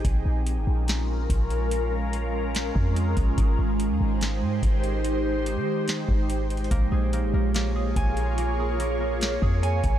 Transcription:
<<
  \new Staff \with { instrumentName = "Ambient pad" } { \time 4/4 \key bes \dorian \tempo 4 = 144 << { <des' f' bes'>1~ | <des' f' bes'>1 | <ees' g' c''>1~ | <ees' g' c''>1 |
<f' aes' des''>1~ | <f' aes' des''>1 | } \\ { aes1~ | aes1~ | aes1~ | aes1 |
bes1~ | bes1 | } >> }
  \new Staff \with { instrumentName = "Harp" } { \time 4/4 \key bes \dorian r1 | r1 | r1 | r1 |
bes8 aes'8 bes8 bes8 bes8 aes'8 aes''4 | bes8 aes'8 bes8 bes8 bes8 aes'8 aes''4 | }
  \new Staff \with { instrumentName = "808-style bass" } { \clef bass \time 4/4 \key bes \dorian bes,,8 bes,,8. aes,,16 bes,,4. bes,,4~ | bes,,2~ bes,,8 f,4 bes,,8 | aes,,8 aes,,8. ees,16 aes,,4 aes,8 aes,,4~ | aes,,4~ aes,,16 ees4~ ees16 aes,,4. |
bes,,8 bes,,8. aes,,16 bes,,4. bes,,4~ | bes,,2~ bes,,8 f,4 bes,,8 | }
  \new DrumStaff \with { instrumentName = "Drums" } \drummode { \time 4/4 <hh bd>4 hh4 <hh sn>4 <hh bd>8 hh8 | hh4 hh4 <hh sn>8 bd8 hh8 <hh bd>8 | <hh bd>4 hh4 <hh sn>4 <hh bd>8 hh8 | hh4 hh4 <hh sn>8 bd8 \tuplet 3/2 { hh16 r16 r16 hh16 hh16 hh16 } |
<hh bd>4 hh4 <hh sn>4 <hh bd>8 hh8 | hh4 hh4 <hh sn>8 bd8 hh8 <hh bd>8 | }
>>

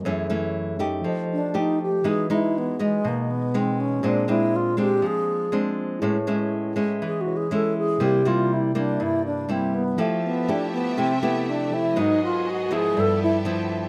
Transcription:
<<
  \new Staff \with { instrumentName = "Tine electric piano" } { \time 4/4 \key f \phrygian \tempo 4 = 121 <ges aes' a' des'' fes''>2 <f g' a' c'' ees''>2 | <e ges' gis' b' dis''>1 | <bes f' aes' c'' d''>1 | <e' gis' ces'' cis''>2~ <e' gis' ces'' cis''>8 <e' gis' ces'' cis''>4. |
<c e' g' bes' d''>1 | <f g' a' c'' e''>2.~ <f g' a' c'' e''>8 <f g' a' c'' g''>8 | <aes ges' bes' ces'' ees''>2 <g a' b' d'' e''>2 | }
  \new Staff \with { instrumentName = "Violin section" } { \time 4/4 \key f \phrygian << { r1 | r1 | r1 | r1 |
r1 | <g' e''>1 | <ges' aes' ees''>2 <g' a' e''>2 | } \\ { r1 | r1 | r1 | r1 |
r1 | a1 | ces'1 | } >> }
  \new Staff \with { instrumentName = "Alto flute" } { \time 4/4 \key f \phrygian r2 r8 d'8 ees'8 g'8 | gis'8 e'8 b8 gis8 bes8 b8 c'8 des'8 | d'8 fes'8 f'8 g'8 aes'4 r4 | r2 \tuplet 3/2 { gis'8 ges'8 gis'8 } a'8 gis'8 |
g'8 f'8 e'8 d'8 e'8 d'8 c'8 ces'8 | a8 ces'8 d'8 ces'8 c'8 ces'8 d'8 e'8 | ees'8 f'8 ges'8 aes'8 a'8 e'8 r4 | }
  \new Staff \with { instrumentName = "Nylon-string guitar" } { \time 4/4 \key f \phrygian << { <fes a des'>8 <fes a des'>4 <a ees' g'>4. <a ees' g'>8 r8 | <gis b dis'>8 <gis b dis'>4 <gis b dis'>4. <gis b dis'>4 | <aes c' d'>8 <aes c' d'>4 <aes c' d'>4. <aes c' d'>4 | <gis cis' e'>8 <gis cis' e'>4 <gis cis' e'>4. <gis cis' e'>4 |
<g bes e'>8 <g bes e'>4 <g bes e'>4. <g bes e'>8 r8 | <a e' g'>4 <a e' g'>4 <a e' g'>8 <a e' g'>4. | <ges ces' ees'>4. <f ces' fes'>4. <f b e'>4 | } \\ { ges,2 f2 | e2 b,2 | bes,2 f2 | a,2 e2 |
c2 g,2 | f2 c2 | aes,2 g,2 | } >> }
>>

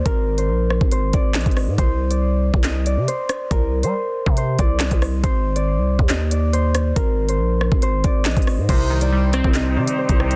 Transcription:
<<
  \new Staff \with { instrumentName = "Harp" } { \time 4/4 \key c \minor \tempo 4 = 139 bes'8. c''4~ c''16 c''8 d''8 ees''8 r8 | c''8. d''4~ d''16 ees''8 d''8 c''4 | bes'8. c''4~ c''16 c''8 d''8 ees''4 | c''8. d''4~ d''16 ees''8 d''8 c''4 |
bes'8. c''4~ c''16 c''8 d''8 ees''8 r8 | c''8. d''4~ d''16 ees''8 d''8 c''4 | }
  \new Staff \with { instrumentName = "Flute section" } { \time 4/4 \key c \minor r1 | r1 | r1 | r1 |
r1 | <c' ees' g' c''>1 | }
  \new Staff \with { instrumentName = "Synth keys" } { \clef bass \time 4/4 \key c \minor r1 | r1 | r1 | r1 |
r1 | c8 ees8 g8 c'8 c8 ees4 c8 | }
  \new Staff \with { instrumentName = "808-style bass" } { \clef bass \time 4/4 \key c \minor aes,,4 bes,,8. aes,,8. aes,,8 bes,,16 aes,,8 aes,16 | c,4.~ c,16 c,4 c16 r4 | c,8. g16 r8. c8. c,8. c,8. | aes,,4~ aes,,16 c,8 ees,2~ ees,16 |
aes,,4 bes,,8. aes,,8. aes,,8 bes,,16 aes,,8 aes,16 | c,4.~ c,16 c,8. c16 r8 c,8. | }
  \new DrumStaff \with { instrumentName = "Drums" } \drummode { \time 4/4 <hh bd>8. hh16 r8 ss16 bd16 hh8 <hh bd>8 <hc hh sn>32 hh32 <hh bd>32 hh32 <hho ss>8 | <hh bd>8. hh16 r8. bd16 <hc hh sn>8 hh8 hh8 <hh ss>8 | <hh bd>8. hh16 r8. bd16 hh8 <hh bd>8 <hc hh sn>16 <hh bd>16 <hho ss>8 | <hh bd>8. hh16 r8. bd16 <hc hh sn>8 hh8 hh8 <hh ss>8 |
<hh bd>8. hh16 r8 ss16 bd16 hh8 <hh bd>8 <hc hh sn>32 hh32 <hh bd>32 hh32 <hho ss>8 | <cymc hh bd>8. hh16 r8 <hh ss>16 bd16 <hc hh sn>8. hh16 r16 <hh bd>16 ss16 hh16 | }
>>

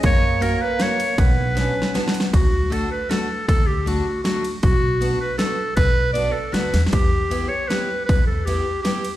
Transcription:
<<
  \new Staff \with { instrumentName = "Clarinet" } { \time 3/4 \key b \minor \tempo 4 = 157 cis''4 ais'8 b'8 cis''4 | b'2~ b'8 r8 | \key d \major fis'4 a'8 b'8 a'4 | a'8 g'8 fis'4 fis'8. r16 |
fis'4. b'8 a'4 | b'4 d''8 a'8 b'8. r16 | g'4. cis''8 b'4 | b'8 a'8 g'4 g'8. r16 | }
  \new Staff \with { instrumentName = "Steel-string acoustic guitar" } { \time 3/4 \key b \minor r4 <ais cis' fis'>8 r8 <ais cis' fis'>8 r8 | r4 <b d' fis'>8 r8 <b d' fis'>8 r8 | \key d \major r4 <a d' fis'>8 r8 <a d' fis'>8 r8 | r4 <a d' fis'>8 r8 <a d' fis'>8 r8 |
r4 <b d' fis'>8 r8 <b d' fis'>8 r8 | r4 <b d' fis'>8 r8 <b d' fis'>8 r8 | r4 <b e' g'>8 r8 <b e' g'>8 r8 | r4 <b e' g'>8 r8 <b e' g'>8 r8 | }
  \new Staff \with { instrumentName = "Euphonium" } { \time 3/4 \key b \minor ais2. | b4 cis'4 b4 | \key d \major r2. | r2. |
r2. | r2. | r2. | r2. | }
  \new Staff \with { instrumentName = "Upright bass" } { \clef bass \time 3/4 \key b \minor fis,2 r4 | b,,2 r4 | \key d \major d,2 r4 | d,2 r4 |
b,,2 r4 | b,,2 d,8 e,8 | e,2 r4 | e,2 r4 | }
  \new DrumStaff \with { instrumentName = "Drums" } \drummode { \time 3/4 <bd cymr>4 cymr4 <cymr sn>8 cymr8 | <bd cymr>4 \tuplet 3/2 { <cymr sn>8 r8 sn8 <cymr sn>16 r16 sn16 cymr16 sn16 r16 } | <bd cymr>4 cymr4 <cymr sn>4 | <bd cymr>4 cymr4 <cymr sn>8 cymr8 |
<bd cymr>4 cymr4 <cymr sn>4 | <bd cymr>4 cymr4 \tuplet 3/2 { <cymr sn>16 r16 r16 <cymr sn>16 r16 sn16 } | <bd cymr>4 cymr4 <cymr sn>4 | <bd cymr>4 cymr4 <cymr sn>8 cymr8 | }
>>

